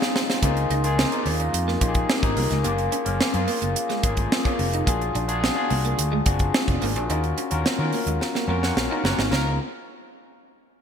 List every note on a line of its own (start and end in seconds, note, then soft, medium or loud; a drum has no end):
0.00 0.44 C4 loud
0.00 0.42 D#4 loud
0.00 0.43 F4 loud
0.00 0.43 G#4 loud
0.00 snare medium
0.16 snare loud
0.30 snare loud
0.42 0.65 C#2 medium
0.42 0.81 A#3 loud
0.42 0.52 C#4 medium
0.42 0.81 D#4 medium
0.42 0.82 F4 medium
0.42 0.82 G#4 loud
0.42 kick medium
0.42 closed hi-hat medium
0.57 muted clean electric guitar stroke soft
0.57 closed hi-hat soft
0.70 1.04 C#2 loud
0.70 0.80 D#4 medium
0.70 closed hi-hat medium
0.83 1.10 A#3 medium
0.83 1.10 D#4 medium
0.83 1.10 F4 medium
0.83 1.10 G#4 loud
0.83 closed hi-hat medium
0.98 muted clean electric guitar stroke soft
0.98 snare loud
1.12 1.77 A#3 medium
1.12 1.77 D#4 medium
1.12 1.77 F4 medium
1.12 1.77 A#4 medium
1.12 closed hi-hat soft
1.26 1.48 D#2 medium
1.26 1.35 C#4 medium
1.26 open hi-hat medium
1.40 1.49 C#4 medium
1.40 closed hi-hat soft
1.53 1.76 F2 medium
1.53 muted clean electric guitar stroke soft
1.53 closed hi-hat loud
1.68 1.77 A#3 medium
1.68 snare soft
1.81 2.04 A#1 medium
1.81 2.20 A#3 loud
1.81 1.91 C#4 medium
1.81 2.20 D#4 medium
1.81 2.20 F4 medium
1.81 1.88 G4 medium
1.81 kick medium
1.81 closed hi-hat medium
1.88 2.23 G#4 loud
1.95 kick medium
1.95 closed hi-hat medium
2.09 muted clean electric guitar stroke soft
2.09 snare loud
2.23 2.34 G#1 loud
2.23 2.62 A#3 medium
2.23 2.62 D#4 medium
2.23 2.62 F4 medium
2.23 2.62 G#4 loud
2.23 kick loud
2.23 closed hi-hat soft
2.37 2.48 C2 medium
2.37 2.46 A#3 medium
2.37 open hi-hat medium
2.51 2.62 C#2 medium
2.51 2.60 G#3 medium
2.51 snare soft
2.51 closed hi-hat soft
2.63 2.87 F#1 medium
2.63 3.03 A#3 medium
2.63 2.74 A#3 medium
2.63 3.03 C#4 medium
2.63 3.04 F4 medium
2.63 2.71 G4 medium
2.63 closed hi-hat medium
2.71 3.07 G#4 loud
2.78 muted clean electric guitar stroke soft
2.78 closed hi-hat soft
2.92 3.01 C#4 medium
2.92 closed hi-hat medium
3.05 3.17 F#1 loud
3.05 3.32 A#3 medium
3.05 3.32 C#4 medium
3.05 3.32 F4 medium
3.05 3.32 A#4 loud
3.05 closed hi-hat medium
3.20 muted fingered electric bass stroke medium
3.20 muted clean electric guitar stroke soft
3.20 snare loud
3.33 3.45 F#2 loud
3.33 3.99 A#3 loud
3.33 3.99 C#4 medium
3.33 3.99 F4 medium
3.33 3.99 G#4 medium
3.33 closed hi-hat soft
3.48 3.57 A#3 medium
3.48 open hi-hat medium
3.62 3.73 F#1 medium
3.62 3.71 A#3 medium
3.62 closed hi-hat soft
3.75 muted clean electric guitar stroke soft
3.75 closed hi-hat loud
3.89 3.99 G#3 medium
3.89 snare soft
3.89 closed hi-hat soft
4.03 4.26 G#1 medium
4.03 4.10 A3 medium
4.03 4.13 A#3 medium
4.03 4.43 C#4 medium
4.03 4.43 F4 medium
4.03 4.43 G#4 loud
4.03 kick medium
4.03 closed hi-hat medium
4.09 4.43 A#3 medium
4.17 kick medium
4.17 closed hi-hat medium
4.32 snare loud
4.44 4.84 A#3 medium
4.44 4.84 C#4 medium
4.44 4.54 C#4 medium
4.44 4.84 F4 medium
4.44 4.84 G#4 medium
4.44 kick medium
4.44 closed hi-hat soft
4.59 4.82 F1 loud
4.59 muted clean electric guitar stroke soft
4.59 open hi-hat medium
4.73 4.83 D#4 medium
4.73 closed hi-hat soft
4.86 5.10 A#1 medium
4.86 4.96 A#3 medium
4.86 5.26 D4 medium
4.86 5.26 F4 medium
4.86 5.26 F#4 medium
4.86 5.26 G#4 loud
4.86 kick medium
4.86 closed hi-hat medium
5.01 muted clean electric guitar stroke soft
5.01 closed hi-hat soft
5.15 5.49 A#1 loud
5.15 5.24 D4 medium
5.15 closed hi-hat medium
5.28 5.54 D4 loud
5.28 5.54 F4 medium
5.28 5.55 F#4 medium
5.28 5.55 G#4 loud
5.28 closed hi-hat medium
5.43 muted clean electric guitar stroke medium
5.43 snare loud
5.55 6.21 D4 medium
5.55 6.21 F4 medium
5.55 6.21 F#4 medium
5.55 6.22 G#4 medium
5.70 5.93 C2 loud
5.70 5.80 A#3 medium
5.70 open hi-hat medium
5.85 5.94 A#3 medium
5.85 closed hi-hat soft
5.98 6.20 D2 loud
5.98 muted clean electric guitar stroke soft
5.98 closed hi-hat loud
6.12 6.21 G#3 medium
6.25 6.49 F#1 loud
6.25 6.32 C4 medium
6.25 6.35 D4 medium
6.25 6.54 F4 medium
6.25 6.54 F#4 medium
6.25 6.54 G#4 loud
6.25 kick medium
6.25 closed hi-hat medium
6.32 6.57 D4 medium
6.39 kick medium
6.39 closed hi-hat soft
6.54 muted clean electric guitar stroke soft
6.54 snare loud
6.67 6.79 F1 medium
6.67 6.81 G#4 medium
6.67 6.81 D5 medium
6.67 kick medium
6.67 closed hi-hat soft
6.81 6.96 G#1 medium
6.81 6.91 A#3 medium
6.81 6.95 F4 medium
6.81 6.94 A#4 medium
6.81 open hi-hat medium
6.95 7.07 A#1 medium
6.95 7.22 D4 medium
6.95 7.05 D4 medium
6.95 7.22 G#4 medium
6.95 closed hi-hat medium
7.09 7.32 D#2 medium
7.09 7.48 C#4 medium
7.09 7.19 D#4 medium
7.09 7.48 F4 medium
7.09 7.49 F#4 medium
7.09 7.49 A#4 medium
7.09 closed hi-hat medium
7.24 muted clean electric guitar stroke soft
7.24 closed hi-hat soft
7.38 7.47 C#4 medium
7.38 closed hi-hat medium
7.50 7.63 D#2 loud
7.50 7.77 C#4 medium
7.50 7.77 F4 medium
7.50 7.77 F#4 medium
7.50 7.77 A#4 loud
7.50 closed hi-hat medium
7.65 muted fingered electric bass stroke soft
7.65 muted clean electric guitar stroke soft
7.65 snare loud
7.79 7.90 D#3 loud
7.79 8.44 C#4 medium
7.79 8.44 F4 medium
7.79 8.44 F#4 medium
7.79 8.44 A#4 medium
7.93 8.02 A#3 medium
7.93 open hi-hat medium
8.06 8.18 D#2 medium
8.06 8.16 G#3 medium
8.06 closed hi-hat soft
8.21 muted clean electric guitar stroke soft
8.21 snare medium
8.35 8.44 A#3 medium
8.35 snare medium
8.47 8.70 F2 loud
8.47 8.58 A#3 medium
8.47 8.87 C#4 medium
8.47 8.87 F4 medium
8.47 8.87 F#4 medium
8.47 8.88 A#4 loud
8.63 8.74 A#3 medium
8.63 8.75 F#4 medium
8.63 8.75 C#5 medium
8.63 snare medium
8.76 8.87 A#1 medium
8.76 snare medium
8.90 9.29 C#4 medium
8.90 9.00 D#4 medium
8.90 9.29 F4 medium
8.90 9.29 F#4 medium
8.90 9.29 A#4 medium
9.04 9.15 F#1 medium
9.04 9.22 A#3 medium
9.04 9.22 F#4 medium
9.04 9.22 C#5 loud
9.04 muted clean electric guitar stroke soft
9.04 snare loud
9.18 9.29 G#1 medium
9.18 9.27 D#4 medium
9.18 snare medium
9.31 9.57 C#2 loud
9.31 9.52 F3 medium
9.31 9.49 C#4 medium
9.31 9.52 C#4 medium
9.31 9.58 D#4 medium
9.31 9.57 F4 medium
9.31 9.57 G#4 medium
9.31 9.57 A#4 medium
9.31 9.52 A#4 loud
9.31 snare medium